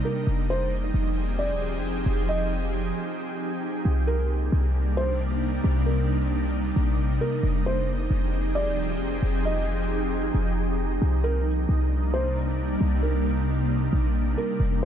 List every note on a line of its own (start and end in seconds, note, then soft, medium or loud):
0.00 0.24 C3 medium
0.00 0.24 G3 medium
0.00 0.24 A#3 medium
0.00 0.24 D4 medium
0.00 3.81 D#4 medium
0.05 0.26 A#4 medium
0.27 0.92 F1 loud
0.27 3.82 F3 medium
0.27 3.82 C4 medium
0.27 3.82 G4 medium
0.27 3.82 G#4 medium
0.50 0.71 C5 medium
0.94 1.52 F1 loud
1.39 1.60 D5 medium
1.50 1.80 D#1 loud
1.78 2.05 F1 loud
2.06 2.92 F1 loud
2.29 2.50 D#5 medium
3.85 4.50 C2 loud
3.85 7.40 C3 medium
3.85 7.40 G3 medium
3.85 7.40 A#3 medium
3.85 7.40 D4 medium
3.85 14.56 D#4 loud
4.07 4.29 A#4 medium
4.52 5.60 C2 loud
4.97 5.19 C5 medium
5.64 6.72 C2 loud
5.86 6.08 A#4 medium
6.76 7.19 A#1 loud
7.21 7.42 A#4 medium
7.43 8.08 F1 loud
7.43 10.98 F3 medium
7.43 10.98 C4 medium
7.43 10.98 G4 medium
7.43 10.98 G#4 medium
7.66 7.87 C5 medium
8.11 8.68 F1 loud
8.55 8.77 D5 medium
8.67 8.96 D#1 loud
8.95 9.21 F1 loud
9.23 10.31 F1 loud
9.45 9.66 D#5 medium
10.35 10.99 F1 loud
11.02 11.66 C2 loud
11.02 14.56 C3 medium
11.02 14.56 G3 medium
11.02 14.56 A#3 medium
11.02 14.56 D4 medium
11.24 11.45 A#4 medium
11.69 12.77 C2 loud
12.14 12.35 C5 medium
12.81 13.89 C2 loud
13.03 13.24 A#4 medium
13.93 14.36 A#1 loud
14.38 14.59 A#4 medium
14.60 14.85 F1 loud
14.60 14.85 F3 medium
14.60 14.85 C4 medium
14.60 14.85 D#4 medium
14.60 14.85 G4 medium
14.60 14.85 G#4 medium